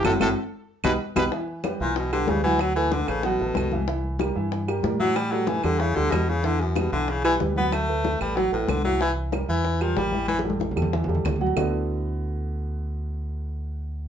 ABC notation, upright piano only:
X:1
M:4/4
L:1/8
Q:1/4=187
K:D
V:1 name="Upright piano"
[=CEF] [CEF] z3 [B,^DG] z [B,DG] | [E,Ee]2 [G,GB] [E,Ee]2 [G,GB] [G,GB] [F,Ff]- | [F,Ff] [A,AB]2 [A,AB] [F,Ff] [A,AB]2 [E,Ee] | [E,Ee]2 [G,G_B] [E,Ee]2 [G,GB] [G,GB] [E,Ee]- |
[E,Ee] [G,GA]2 [G,GA] [E,Ee] [G,GA]2 [E,Ee] | [E,Ee]2 [G,GB] [E,Ee]2 [G,GB] [G,GB] [F,Ff]- | [F,Ff] [A,AB]2 [A,AB] [F,Ff] [A,AB]2 [E,Ee] | [E,Ee]2 [G,G_B] [E,Ee]2 [G,GB] [G,GB] [E,Ee]- |
[E,Ee] [G,GA]2 [G,GA] [E,Ee] [G,GA]2 [F,Ff] | [D,A,B,DEF]8- | [D,A,B,DEF]8 |]